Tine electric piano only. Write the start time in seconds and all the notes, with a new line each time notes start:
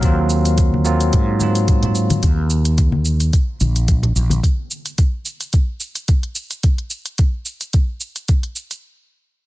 0.01 F#3 A#3 C4 F4
0.85 F#3 A#3 C4 F4
1.39 F#3 A#3 C4 F4